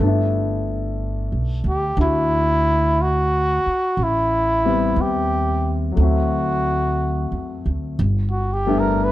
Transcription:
Already playing: grand piano A3
0.00 upright bass G1, grand piano B3 D4
0.06 grand piano E4
1.32 upright bass B1
1.64 upright bass D2
1.69 trumpet G4
1.97 upright bass D2, grand piano D4 E4 F#4
2.02 trumpet E4
3.01 trumpet F#4
3.66 muted upright bass stroke
3.97 upright bass A1
4.03 trumpet E4
4.65 grand piano G3 B3 C4 E4
4.96 upright bass D#2
5.01 trumpet G4
5.92 grand piano F#3 A3
5.97 upright bass D2, grand piano C4
6.02 grand piano E4, trumpet F#4
7.32 upright bass E2
7.66 upright bass D2
7.99 upright bass G1
8.31 trumpet F#4
8.53 trumpet G4
8.67 grand piano G3 A3 B3 D4 E4
8.79 trumpet A#4
9.04 trumpet B4

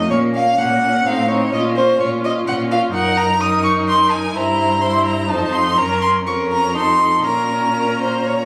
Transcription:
Already playing: violin D#4
0.09 cello A#2, viola A#3, violin C#4 C#5
0.33 viola A#3, violin C#4 F5
0.58 cello A#2, viola A#3, violin C#4 F#5
0.82 viola A#3, violin C#4
1.05 cello A2, viola C4, violin D#4 F5
1.28 viola C4, violin D#4 C#5
1.53 cello A#2, viola C#4, violin F4 D#5
1.76 viola C#4, violin F4 C5
2.00 cello A#2, viola C#4, violin F4 C#5
2.24 viola C#4, violin F4 D#5
2.47 cello A#2, viola C#4, violin F4 F#5
2.71 viola C#4, violin F4 F5
2.94 cello F#2, viola D#4, violin A#4 F#5
3.17 violin A#5
3.41 viola D#4, violin A#4 D#6
3.64 violin C#6
3.89 violin C6
4.11 violin G#5
4.34 cello G2, viola E4, violin C5 A#5
4.82 viola E4, violin C5 C6
5.05 violin A#5
5.29 cello F2, viola D#4, violin C5 A5
5.53 violin C6
5.78 cello F#2, viola C#4, violin A#4 A#5
6.02 violin C6
6.26 cello F2, viola C#4, violin A#4 C#6
6.52 violin A#5
6.75 viola D#4, violin A4 C6
7.24 cello A#2, viola C#4, violin A#4 A#5
7.76 violin A#4
8.00 violin C5
8.26 violin C#5

